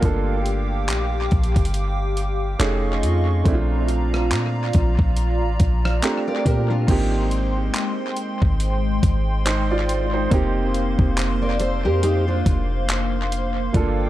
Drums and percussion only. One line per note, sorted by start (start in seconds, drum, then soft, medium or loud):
0.03 kick loud
0.03 closed hi-hat medium
0.46 closed hi-hat medium
0.88 clap loud
0.88 closed hi-hat medium
1.31 kick medium
1.31 closed hi-hat soft
1.44 closed hi-hat soft
1.56 kick loud
1.56 closed hi-hat medium
1.65 closed hi-hat medium
1.74 closed hi-hat medium
2.17 closed hi-hat medium
2.60 clap loud
2.60 closed hi-hat medium
3.03 closed hi-hat medium
3.45 kick loud
3.45 closed hi-hat medium
3.88 closed hi-hat medium
4.14 cross-stick medium
4.31 clap loud
4.31 closed hi-hat medium
4.73 kick loud
4.73 closed hi-hat medium
4.99 kick medium
5.17 closed hi-hat medium
5.60 kick loud
5.60 closed hi-hat medium
5.85 cross-stick medium
6.02 clap loud
6.02 closed hi-hat medium
6.46 kick medium
6.46 closed hi-hat medium
6.88 kick loud
6.88 closed hi-hat medium
6.88 crash loud
7.31 closed hi-hat medium
7.74 clap loud
7.74 closed hi-hat medium
8.17 closed hi-hat medium
8.42 kick loud
8.60 closed hi-hat medium
9.03 kick medium
9.03 closed hi-hat medium
9.46 clap loud
9.46 closed hi-hat medium
9.89 closed hi-hat medium
10.31 kick loud
10.31 closed hi-hat medium
10.74 closed hi-hat medium
10.99 kick medium
11.17 clap loud
11.17 closed hi-hat medium
11.60 closed hi-hat medium
12.03 closed hi-hat medium
12.46 kick loud
12.46 closed hi-hat medium
12.89 clap loud
12.89 closed hi-hat medium
13.32 closed hi-hat medium
13.74 kick loud
13.74 closed hi-hat medium